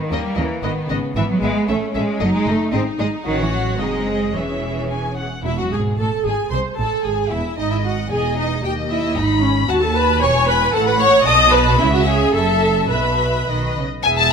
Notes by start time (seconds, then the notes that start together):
Already playing: D#3
0.09 D#2 G3 A#3 C#4 A#4 D#5
0.35 D#2 E3 C#4 A#4 D#5
0.62 G#1 D#3 B3 B4 D#5
0.89 G#1 C#3 B3 B4 D#5
1.15 G#1 E3 B3 B4 E5
1.30 F#3
1.42 G#1 G#3 B3 B4 E5
1.68 A1 A3 C#4 A4 E5
1.94 A1 G#3 C#4 A4 E5
2.20 F#1 F#3 D#4 A4 D#5
2.34 G#3
2.46 F#1 A3 D#4 A4 D#5
2.72 G#1 C4 D#4 G#4 D#5
2.98 G#1 G#3 D#4 G#4 D#5
3.25 A1 D#3 C#4 F#4 C#5 F#5
3.39 E3
3.53 F#3
3.78 F#1 G#3 C4 D#4 G#4 D#5
4.08 C4
4.33 E1 E3 C#4 G#4 E5
4.90 G#5
5.17 F#5
5.44 E1 E2 E4 E5
5.58 F#2 F#4 F#5
5.71 G#1 G#2 G#4 G#5
5.98 A1 A2 A4 A5
6.25 G#1 G#2 G#4 G#5
6.51 C2 C3 C5 C6
6.77 A1 A2 A4 A5
7.03 G#1 G#2 G#4 G#5
7.30 E1 E2 E4 E5
7.57 G#1 G#2 D#4 D#5
7.71 E4 E5
7.84 F#4 F#5
8.11 E1 E2 G#4 D#5 G#5
8.37 D#4 D#5
8.63 D#2 G4 D#5 G5
8.90 E4 E5
9.15 G#1 G#2 D#4 D#5 B5
9.42 C#4 C#5
9.67 D#2 F#4 F#5 A5
9.81 A4 A5
9.95 B4 B5
10.21 E1 E2 C#5 G#5 C#6
10.47 B4 B5
10.73 A1 A2 A4 F#5 A5
10.87 B4 B5
11.00 C#5 C#6
11.25 B1 B2 D#5 A5 D#6
11.52 B4 B5
11.78 C#2 C#3 E4 E5
11.93 F#4 F#5
12.06 G#4 G#5
12.33 F#1 F#2 A4 E5 A5
12.89 B1 B2 B4 E5 B5
13.48 B1 D#3 D#5
13.76 C#3
14.04 E1 E2 B3 E4 G#4 E5 G#5
14.18 A5